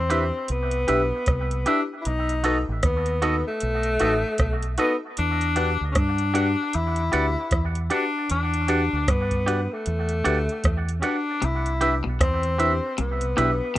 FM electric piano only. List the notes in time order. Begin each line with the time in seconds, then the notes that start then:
0.11 D4 E4 G4 B4
0.88 D4 E4 G4 B4
1.67 D4 E4 G4 B4
2.45 D#4 F#4 A4 B4
3.23 D#4 F#4 A4 B4
4.00 D#4 F#4 A4 B4
4.78 D#4 F#4 A4 B4
5.56 D4 F#4 G4 B4
6.34 D4 F#4 G4 B4
7.13 D4 F#4 G4 B4
7.90 D4 F#4 G4 B4
8.68 D4 F#4 G4 B4
9.47 D4 F#4 G4 B4
10.24 D4 F#4 G4 B4
11.03 D4 F#4 G4 B4
11.81 D4 E4 G4 B4
12.59 D4 E4 G4 B4
13.37 D4 E4 G4 B4